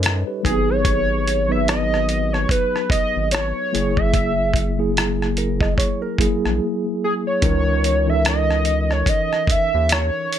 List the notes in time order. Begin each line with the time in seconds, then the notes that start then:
Already playing: F#2 G3 C#4 D#4 A4 B4 C#5 D#5
0.03 cross-stick, closed hi-hat
0.27 G4 B4
0.43 G#1 F#3 A#3 D#4 G#4, kick, closed hi-hat
0.50 B3
0.70 C#5
0.85 kick, closed hi-hat
1.28 closed hi-hat
1.48 F#3 B3 D#4 B4 E5
1.68 D#5, cross-stick, closed hi-hat
1.94 cross-stick
2.09 closed hi-hat
2.33 C#5, cross-stick
2.49 B4, kick, closed hi-hat
2.76 cross-stick
2.90 G#1 D#5, kick, closed hi-hat
3.17 G#1
3.31 C#5, cross-stick, closed hi-hat
3.72 F#1 F#3 A#3 E4 G#4, closed hi-hat
3.97 E5, kick
4.14 kick, closed hi-hat
4.54 kick, closed hi-hat
4.78 F#3 A#3 E4 G#4
4.97 cross-stick, closed hi-hat
5.22 cross-stick
5.37 A#4, closed hi-hat
5.61 D#5, kick, cross-stick
5.78 C#5, kick, closed hi-hat
6.02 A#4
6.18 A#1 F#3 A#3 E4 G#4, kick, closed hi-hat
6.46 A#1, cross-stick
7.04 G#4
7.27 C#5
7.41 C#2 E3 C#4 D#4 A#4, kick, closed hi-hat
7.84 closed hi-hat
8.06 E3 C#4 D#4 A4 E5
8.14 A#4
8.25 D#5, cross-stick, closed hi-hat
8.51 cross-stick
8.65 closed hi-hat
8.91 C#5, cross-stick
9.06 D#5, kick, closed hi-hat
9.33 cross-stick
9.47 D#2 E5, kick, closed hi-hat
9.74 D#2
9.89 C#5, cross-stick, closed hi-hat
10.33 closed hi-hat